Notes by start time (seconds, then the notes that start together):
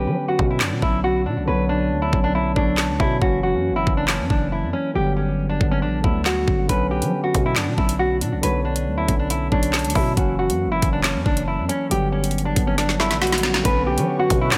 Already playing: D3 F#3 B3 C#4 G4
0.04 D3 F#3 B3 C#4
0.28 F#4
0.38 B2 D3 F#3 B3 C#4, kick
0.50 E4
0.60 F#2 D4, snare, clap
0.72 B2
0.82 B1 E4, kick
1.04 F#4
1.26 B2 D4
1.37 B1
1.46 B1 D3 F#3 B3 B4 C#5
1.69 D4
1.91 D2
2.02 E4
2.11 B1 D3 F#3 B3 C#4, kick
2.24 D4
2.35 E4
2.55 B1 D3 F#3 B3 D4 C#5, kick
2.78 snare, clap
2.89 D2
2.98 B2 D3 F#3 B3 C#4 E4, kick
3.20 F#1 E3 F#3 A#3 C#4 F#4, kick
3.43 F#4
3.53 F#2 E3 F#3 A#3 C#4
3.70 F#1
3.76 E4
3.85 F#1 E3 F#3 A#3 C#4, kick
3.97 D4
4.08 snare, clap
4.19 F#2
4.30 F#1 D4, kick
4.52 E4
4.63 F#2
4.73 C#4
4.94 G1 D3 F#3 G3 B3 G4
5.16 C#4
5.49 D4
5.59 G1 D3 F#3 G3 B3, kick
5.71 C#4
5.82 A#1 D4
6.02 D2 D3 F#3 G3 B3 E4, kick
6.26 F#4, snare, clap
6.46 G1 D3 F#3 G3 C#4, kick
6.68 B1 D3 F#3 B3 C#4 B4, kick, closed hi-hat
6.91 G4
7.00 D3 F#3 B3 C#4, closed hi-hat
7.24 F#4
7.33 B2 D3 F#3 B3 C#4, kick, closed hi-hat
7.46 E4
7.56 F#2 D4, snare, clap, closed hi-hat
7.67 B2
7.78 B1 E4, kick
7.89 closed hi-hat
7.99 F#4
8.21 B2 D4, closed hi-hat
8.32 B1
8.41 B1 D3 F#3 B3 B4 C#5, closed hi-hat
8.65 D4
8.76 closed hi-hat
8.87 D2
8.98 E4
9.06 B1 D3 F#3 B3 C#4, kick, closed hi-hat
9.19 D4
9.30 E4, closed hi-hat
9.50 B1 D3 F#3 B3 D4 C#5, kick
9.63 closed hi-hat
9.73 snare, clap, closed hi-hat
9.79 closed hi-hat
9.85 D2, closed hi-hat
9.90 D3, closed hi-hat
9.95 B2 F#3 B3 C#4 E4, kick, open hi-hat
10.16 F#1 E3 F#3 A#3 C#4 F#4, kick, closed hi-hat
10.39 F#4
10.48 F#2 E3 F#3 A#3 C#4, closed hi-hat
10.66 F#1
10.72 E4
10.81 F#1 E3 F#3 A#3 C#4, kick, closed hi-hat
10.93 D4
11.04 C#4, snare, clap, closed hi-hat
11.15 F#2
11.26 F#1 D4, kick
11.37 closed hi-hat
11.48 E4
11.58 F#2
11.69 C#4, closed hi-hat
11.89 G1 D3 F#3 G3 B3 G4, closed hi-hat, riser
12.12 C#4
12.24 closed hi-hat
12.31 closed hi-hat
12.38 closed hi-hat
12.45 D4
12.55 G1 D3 F#3 G3 B3, kick, closed hi-hat
12.67 C#4
12.78 D4, snare, closed hi-hat
12.89 snare
12.98 D3 F#3 G3 B3 E4, snare
13.11 A#1, snare, closed hi-hat
13.22 F#4, snare, closed hi-hat
13.27 closed hi-hat
13.32 snare, closed hi-hat
13.38 D3, closed hi-hat
13.43 F#3 G3 C#4, snare, closed hi-hat
13.54 snare
13.63 B1 D3 F#3 B3 C#4 B4 C#5 F#5 C#6, kick, closed hi-hat
13.87 G4
13.96 D3 F#3 B3 C#4, closed hi-hat
14.19 F#4
14.29 B2 D3 F#3 B3 C#4, kick, closed hi-hat
14.41 E4
14.52 F#2 D4, cross-stick, snare, clap, closed hi-hat